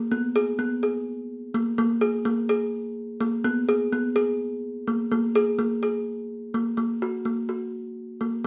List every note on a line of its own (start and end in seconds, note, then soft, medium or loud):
0.12 0.29 B3 medium
0.36 0.52 G#4 medium
0.59 0.76 B3 medium
0.83 1.17 G#4 medium
1.55 1.71 A#3 medium
1.78 1.95 A#3 medium
2.01 2.18 G#4 medium
2.25 2.42 A#3 medium
2.49 2.83 G#4 medium
3.21 3.37 A#3 medium
3.44 3.61 B3 medium
3.69 3.85 G#4 medium
3.93 4.09 B3 medium
4.16 4.49 G#4 medium
4.88 5.04 A#3 medium
5.12 5.28 A#3 medium
5.35 5.52 G#4 medium
5.59 5.76 A#3 medium
5.83 6.16 G#4 medium
6.54 6.71 A#3 medium
6.77 6.94 A#3 medium
7.02 7.19 F#4 medium
7.25 7.42 A#3 medium
7.49 7.83 F#4 medium
8.21 8.38 A#3 medium